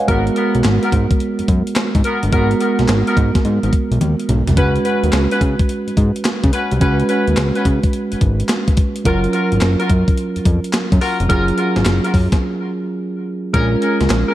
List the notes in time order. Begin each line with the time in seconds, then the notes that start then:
Already playing: B4 D#5 F5 G#5
0.00 C#5 F#5
0.07 G#1 G#3 B3 F#4 A#4, kick, closed hi-hat
0.27 closed hi-hat
0.36 B3 F#4 A#4, closed hi-hat
0.55 B1, closed hi-hat
0.64 G#1, snare, clap, closed hi-hat
0.82 B3 F#4 A#4, closed hi-hat
0.92 G#2, kick, closed hi-hat
1.11 kick, closed hi-hat
1.20 closed hi-hat
1.39 F#2, closed hi-hat
1.48 F#2, kick, closed hi-hat
1.67 closed hi-hat
1.76 snare, clap, closed hi-hat
1.95 G#2, kick, closed hi-hat
2.04 B3 F#4 A#4, closed hi-hat
2.23 G1, closed hi-hat
2.32 G#1 G#3 B3 F#4 A#4, kick, closed hi-hat
2.51 closed hi-hat
2.60 B3 F#4 A#4, closed hi-hat
2.79 B1, snare, closed hi-hat
2.88 G#1, snare, clap, closed hi-hat
3.07 B3 F#4 A#4, closed hi-hat
3.17 G#2, kick, closed hi-hat
3.35 kick, snare, closed hi-hat
3.45 G#2, closed hi-hat
3.63 G#1, closed hi-hat
3.73 kick, closed hi-hat
3.91 B1, closed hi-hat
4.01 D#2, closed hi-hat, high tom
4.20 closed hi-hat
4.29 B1, closed hi-hat, mid tom
4.47 C2, closed hi-hat, floor tom
4.56 C#2 G#3 C#4 F#4 B4, kick, closed hi-hat
4.76 closed hi-hat
4.85 C#4 F#4 B4, closed hi-hat
5.03 D#2, closed hi-hat
5.12 C#2, snare, clap, closed hi-hat
5.31 C#4 F#4 B4, closed hi-hat
5.41 C#3, kick, closed hi-hat
5.59 kick, closed hi-hat
5.69 closed hi-hat
5.88 G#2, closed hi-hat
5.97 G#2, kick, closed hi-hat
6.16 closed hi-hat
6.24 snare, clap, closed hi-hat
6.44 C#3, kick, closed hi-hat
6.53 C#4 F#4 B4, closed hi-hat
6.71 C2, closed hi-hat
6.80 C#2 G#3 C#4 F#4 B4, kick, closed hi-hat
7.00 closed hi-hat
7.09 C#4 F#4 B4, closed hi-hat
7.27 D#2, closed hi-hat
7.37 C#2, snare, clap, closed hi-hat
7.55 C#4 F#4 B4, closed hi-hat
7.65 C#3, kick, closed hi-hat
7.83 kick, closed hi-hat
7.93 closed hi-hat
8.12 G#1, closed hi-hat
8.21 G#1, kick, closed hi-hat
8.40 closed hi-hat
8.48 snare, clap, closed hi-hat
8.68 kick, closed hi-hat
8.77 kick, closed hi-hat
8.96 closed hi-hat
9.05 F#1 F#3 C#4 F4 F#4 A#4, kick, closed hi-hat
9.24 closed hi-hat
9.33 F4 F#4 A#4, closed hi-hat
9.52 G#1, closed hi-hat
9.61 F#1, snare, clap, closed hi-hat
9.79 F4 F#4 A#4, closed hi-hat
9.90 F#2, kick, closed hi-hat
10.08 kick, closed hi-hat
10.18 closed hi-hat
10.36 F2, closed hi-hat
10.45 F2, kick, closed hi-hat
10.64 closed hi-hat
10.73 snare, clap, closed hi-hat
10.92 F#2, kick, closed hi-hat
11.01 F4 F#4 A#4, open hi-hat
11.20 F1, closed hi-hat
11.29 F#1 F#3 C#4 F4 F#4 G#4 A#4, kick, closed hi-hat
11.48 closed hi-hat
11.57 F4 F#4 A#4, closed hi-hat
11.76 G#1, snare, closed hi-hat
11.85 F#1, snare, clap, closed hi-hat
12.04 F4 F#4 A#4, closed hi-hat
12.14 F#2, kick, open hi-hat
12.32 kick, snare, closed hi-hat
13.53 A#1 G#3 C#4 F4 G#4 A#4, kick, closed hi-hat
13.82 C#4 G#4 A#4, closed hi-hat
14.01 C#2, snare, closed hi-hat
14.09 A#1, snare, clap, closed hi-hat
14.28 C#4 G#4 A#4